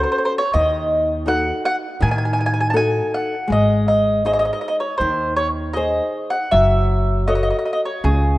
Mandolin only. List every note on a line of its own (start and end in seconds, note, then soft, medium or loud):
0.03 0.10 C5 medium
0.12 0.17 C5 medium
0.18 0.24 C5 medium
0.25 0.32 C5 medium
0.38 0.53 C#5 medium
0.54 1.24 D#5 medium
1.28 1.63 F#5 medium
1.65 1.75 F#5 loud
2.02 2.09 G#5 medium
2.11 2.17 G#5 medium
2.18 2.24 G#5 medium
2.25 2.32 G#5 medium
2.33 2.39 G#5 medium
2.41 2.45 G#5 medium
2.46 2.52 G#5 medium
2.54 2.59 G#5 medium
2.61 2.67 G#5 medium
2.70 2.76 A5 medium
2.77 3.11 G#5 medium
3.14 3.49 F#5 medium
3.52 3.87 D#5 medium
3.88 4.23 D#5 medium
4.26 4.32 D#5 medium
4.33 4.38 D#5 medium
4.39 4.44 D#5 medium
4.45 4.52 D#5 medium
4.53 4.60 D#5 medium
4.61 4.67 D#5 medium
4.68 4.76 D#5 medium
4.80 4.97 C#5 medium
4.98 5.34 C5 medium
5.37 5.47 C#5 medium
5.73 6.34 D#5 medium
6.30 6.51 F#5 medium
6.51 7.27 E5 medium
7.28 7.34 D#5 medium
7.35 7.42 D#5 medium
7.43 7.49 D#5 medium
7.50 7.57 D#5 medium
7.59 7.64 D#5 medium
7.66 7.72 D#5 soft
7.73 7.80 D#5 medium
7.85 8.04 C#5 medium
8.05 8.38 G#4 medium